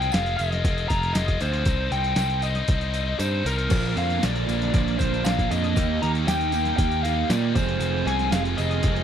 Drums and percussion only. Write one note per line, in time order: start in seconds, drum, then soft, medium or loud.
0.02 closed hi-hat soft
0.12 snare loud
0.12 closed hi-hat loud
0.12 tambourine medium
0.26 closed hi-hat medium
0.39 closed hi-hat medium
0.39 tambourine medium
0.52 snare soft
0.52 closed hi-hat soft
0.64 kick loud
0.64 closed hi-hat loud
0.64 tambourine soft
0.78 closed hi-hat medium
0.90 kick medium
0.90 closed hi-hat medium
0.90 tambourine medium
1.03 closed hi-hat soft
1.15 snare loud
1.15 closed hi-hat loud
1.15 tambourine medium
1.28 kick medium
1.28 closed hi-hat medium
1.41 closed hi-hat medium
1.41 tambourine medium
1.53 closed hi-hat medium
1.65 kick loud
1.65 closed hi-hat loud
1.65 tambourine medium
1.92 closed hi-hat medium
1.92 tambourine soft
2.04 closed hi-hat medium
2.16 snare loud
2.16 closed hi-hat loud
2.16 tambourine medium
2.30 closed hi-hat soft
2.42 closed hi-hat medium
2.42 tambourine medium
2.55 snare soft
2.55 closed hi-hat soft
2.68 kick loud
2.68 closed hi-hat loud
2.68 tambourine soft
2.81 closed hi-hat soft
2.94 closed hi-hat medium
2.94 tambourine medium
3.19 closed hi-hat loud
3.19 tambourine loud
3.46 closed hi-hat medium
3.46 tambourine medium
3.58 closed hi-hat soft
3.70 kick loud
3.70 crash loud
3.70 tambourine medium
3.97 closed hi-hat medium
4.10 closed hi-hat soft
4.23 snare loud
4.23 closed hi-hat loud
4.23 tambourine loud
4.36 closed hi-hat soft
4.49 closed hi-hat medium
4.49 tambourine medium
4.62 snare soft
4.62 closed hi-hat soft
4.74 kick loud
4.74 closed hi-hat medium
4.74 tambourine soft
4.88 closed hi-hat soft
4.99 kick medium
4.99 closed hi-hat medium
4.99 tambourine medium
5.14 closed hi-hat soft
5.25 snare loud
5.25 closed hi-hat loud
5.25 tambourine loud
5.39 kick medium
5.39 closed hi-hat soft
5.51 closed hi-hat medium
5.51 tambourine medium
5.64 closed hi-hat soft
5.76 kick loud
5.76 closed hi-hat loud
5.76 tambourine medium
6.03 closed hi-hat medium
6.15 closed hi-hat medium
6.28 snare loud
6.28 closed hi-hat loud
6.28 tambourine medium
6.41 closed hi-hat medium
6.52 closed hi-hat medium
6.52 tambourine medium
6.65 snare soft
6.65 closed hi-hat soft
6.78 kick loud
6.78 closed hi-hat loud
6.78 tambourine soft
6.92 closed hi-hat soft
7.05 closed hi-hat medium
7.05 tambourine medium
7.30 snare loud
7.30 closed hi-hat loud
7.30 tambourine loud
7.55 kick loud
7.55 closed hi-hat medium
7.55 tambourine medium
7.68 closed hi-hat soft
7.80 closed hi-hat loud
7.80 tambourine medium
8.07 closed hi-hat medium
8.19 closed hi-hat soft
8.32 snare loud
8.32 closed hi-hat medium
8.32 tambourine loud
8.45 closed hi-hat soft
8.58 closed hi-hat medium
8.58 tambourine medium
8.71 closed hi-hat soft
8.83 kick loud
8.83 closed hi-hat loud
8.83 tambourine soft
8.96 closed hi-hat soft